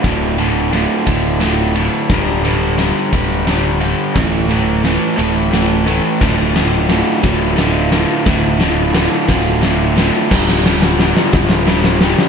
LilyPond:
<<
  \new Staff \with { instrumentName = "Overdriven electric guitar" } { \clef bass \time 6/8 \key g \dorian \tempo 4. = 58 <d, a, d>8 <d, a, d>8 <d, a, d>8 <d, a, d>8 <d, a, d>8 <d, a, d>8 | <g, d g>8 <g, d g>8 <g, d g>8 <g, d g>8 <g, d g>8 <g, d g>8 | <a, e a>8 <a, e a>8 <a, e a>8 <a, e a>8 <a, e a>8 <a, e a>8 | <d, a, d>8 <d, a, d>8 <d, a, d>8 <d, a, d>8 <d, a, d>8 <d, a, d>8 |
<d, a, d>8 <d, a, d>8 <d, a, d>8 <d, a, d>8 <d, a, d>8 <d, a, d>8 | <g, d g>8 <g, d g>8 <g, d g>8 <g, d g>8 <g, d g>8 <g, d g>8 | }
  \new Staff \with { instrumentName = "Picked electric bass" } { \clef bass \time 6/8 \key g \dorian d,,4. d,,4. | d,,4. d,,4. | d,,4. d,,4. | d,,4. d,,4. |
d,,4. d,,4. | d,,4. d,,4. | }
  \new DrumStaff \with { instrumentName = "Drums" } \drummode { \time 6/8 <bd cymr sn>8 cymr8 <cymr sn>8 <bd cymr>8 <cymr sn>8 cymr8 | <cymc bd sn>8 cymr8 <cymr sn>8 <bd cymr>8 <cymr sn>8 cymr8 | <bd cymr sn>8 cymr8 <cymr sn>8 cymr8 <cymr sn>8 cymr8 | <cymc bd sn>8 <cymr sn>8 <cymr sn>8 <bd cymr sn>8 <cymr sn>8 <cymr sn>8 |
<bd cymr sn>8 <cymr sn>8 <cymr sn>8 <bd cymr sn>8 <cymr sn>8 <cymr sn>8 | <cymc bd sn>16 sn16 sn16 sn16 sn16 sn16 <bd sn>16 sn16 sn16 sn16 sn16 sn16 | }
>>